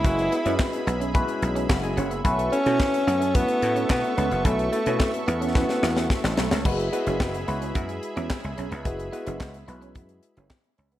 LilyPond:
<<
  \new Staff \with { instrumentName = "Analog synth pad" } { \time 4/4 \key fis \minor \tempo 4 = 109 <gis' e'' b''>1 | <a' e'' cis'''>1~ | <a' e'' cis'''>1 | <gis' e'' b''>1~ |
<gis' e'' b''>1 | }
  \new Staff \with { instrumentName = "Tine electric piano" } { \time 4/4 \key fis \minor << { r2. <fis'' b''>16 <dis'' gis''>16 <cis'' fis''>16 <b' e''>16~ | <b' e''>16 r2. r8. | r1 | r1 |
r1 | } \\ { <gis cis' e' fis' b'>8 r16 <gis cis' e' fis' b'>4 r16 <gis cis' e' fis' b'>4. r8 | <a cis' e' fis' b'>8 r16 <a cis' e' fis' b'>4 r16 <a cis' e' fis' b'>4. r8 | <a cis' e' fis' b'>8 r16 <a cis' e' fis' b'>4 r16 <a cis' e' fis' b'>4. r8 | <gis e' fis' b'>8 <gis e' fis' b'>8. r16 <gis e' fis' b'>4. r4 |
<gis e' fis' b'>8 <gis e' fis' b'>8. r16 <gis e' fis' b'>4. r4 | } >> }
  \new Staff \with { instrumentName = "Alto saxophone" } { \time 4/4 \key fis \minor e'4. r2 r8 | r8 cis'4. b4 b8 b8 | a8 a8 a8 b2 r8 | r1 |
r1 | }
  \new Staff \with { instrumentName = "Clean electric guitar" } { \time 4/4 \key fis \minor r8 b16 cis'16 r8 b16 cis'16 b16 r8 cis'16 r8 cis'16 b16 | r8 b16 cis'16 r8 b16 cis'16 b16 r8 cis'16 r8 cis'16 b16 | r8 b16 cis'16 r8 b16 cis'16 cis'16 r8 b16 r8 a16 a16 | r8 b16 cis'16 r8 b16 cis'16 b16 r8 cis'16 r8 cis'16 b16 |
r8 b16 cis'16 r8 b16 cis'16 b16 r8 cis'16 r8 cis'16 b16 | }
  \new Staff \with { instrumentName = "Slap bass" } { \clef bass \time 4/4 \key fis \minor fis,,8 r16 fis,16 r8 b,,8. r16 b,,8 fis,,8 fis,,8 | b,,8 r16 b,16 r8 fis,8. r16 a,8 b,16 r16 cis,16 fis,,16 | b,,8 r16 b,16 r8 e,8. r16 e,8 r16 a,,16 b,,16 cis,16 | fis,,8 r16 fis,,16 fis,,8 cis,8 fis,8 r16 e,16 r16 cis,16 b,,16 cis,16 |
fis,,8 r16 fis,,16 cis,8 b,,8 fis,8 r16 fis,,16 r8 cis,8 | }
  \new DrumStaff \with { instrumentName = "Drums" } \drummode { \time 4/4 <hh bd>16 hh16 hh16 hh16 <hc bd sn>16 hh16 hh16 hh16 <hh bd>16 hh16 hh16 hh16 <hc bd sn>16 hh16 hh16 hh16 | <hh bd>16 hh16 hh16 hh16 <hc bd sn>16 hh16 hh16 hh16 <hh bd>16 hh16 hh16 hh16 <hc bd sn>16 hh16 hh16 hh16 | <hh bd>16 hh16 hh16 hh16 <hc bd sn>16 hh16 hh16 hh16 <bd sn>16 sn16 sn16 sn16 <bd sn>16 sn16 sn16 sn16 | <cymc bd>16 hh16 hh16 hh16 <hc bd sn>16 hh16 hh16 hh16 <hh bd>16 hh16 hh16 hh16 <hc bd sn>16 hh16 hh16 hh16 |
<hh bd>16 hh16 hh16 hh16 <hc bd sn>16 hh16 hh16 hh16 <hh bd>16 hh16 hh16 hh16 <hc bd sn>16 hh16 hh16 hh16 | }
>>